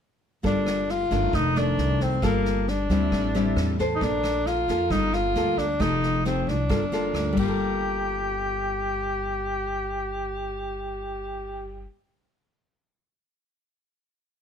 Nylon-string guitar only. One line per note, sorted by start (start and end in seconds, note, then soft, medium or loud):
0.43 1.11 G3 soft
0.43 0.88 A#3 soft
0.43 0.88 F4 soft
0.43 0.88 A4 medium
1.11 1.52 D#3 medium
1.11 1.52 A3 medium
1.11 1.52 D4 medium
1.33 2.20 F2 soft
1.56 2.19 D#3 medium
1.56 2.19 A3 medium
1.56 2.20 D4 medium
2.22 2.89 G3 soft
2.22 2.67 A#3 soft
2.22 2.67 F4 medium
2.22 2.67 A4 medium
2.90 3.31 G3 medium
2.90 3.31 C4 medium
2.90 3.31 E4 medium
3.12 3.99 A2 soft
3.35 3.75 G3 medium
3.35 3.76 C4 medium
3.35 3.76 E4 medium
3.79 4.65 D4 soft
3.79 4.65 A4 medium
3.79 4.65 C5 medium
4.01 4.68 A#3 soft
4.69 5.32 A#3 medium
4.69 5.32 F4 medium
4.69 5.32 A4 medium
4.91 5.78 G3 soft
5.36 5.64 A#3 medium
5.36 5.64 F4 medium
5.36 5.65 A4 medium
5.80 6.67 F3 soft
5.80 6.21 A3 soft
5.80 6.21 D#4 soft
5.80 6.22 G4 soft
6.25 6.55 A3 soft
6.25 6.55 D#4 medium
6.25 6.55 G4 medium
6.69 7.31 G3 soft
6.69 6.82 A#3 soft
6.69 6.83 F4 soft
6.69 6.83 A4 medium
6.92 7.37 A#3 soft
6.92 7.37 F4 soft
6.92 7.37 A4 medium
7.33 11.84 G3 medium
7.39 11.90 A#3 medium
7.43 11.94 F4 medium
7.48 11.99 A4 medium